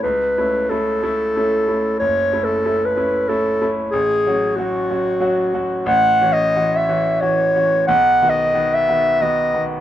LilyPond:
<<
  \new Staff \with { instrumentName = "Clarinet" } { \time 3/4 \key fis \minor \tempo 4 = 91 b'4 a'2 | \tuplet 3/2 { cis''4 a'8~ a'8 b'4 } a'8 r8 | gis'4 fis'2 | \key fis \dorian \tuplet 3/2 { fis''4 dis''8~ dis''8 e''4 } cis''4 |
\tuplet 3/2 { fis''4 dis''8~ dis''8 e''4 } dis''8 r8 | }
  \new Staff \with { instrumentName = "Grand piano" } { \time 3/4 \key fis \minor cis,8 <a cis' e'>8 <a cis' e'>8 <a cis' e'>8 <a cis' e'>8 <a cis' e'>8 | fis,,8 <a cis' e'>8 <a cis' e'>8 <a cis' e'>8 <a cis' e'>8 <a cis' e'>8 | a,,8 <fis cis' fis'>8 <fis cis' fis'>8 <fis cis' fis'>8 <fis cis' fis'>8 <fis cis' fis'>8 | \key fis \dorian a,,8 <e cis' fis'>8 <e cis' fis'>8 <e cis' fis'>8 <e cis' fis'>8 <e cis' fis'>8 |
b,,8 <dis b fis'>8 <dis b fis'>8 <dis b fis'>8 <dis b fis'>8 <dis b fis'>8 | }
>>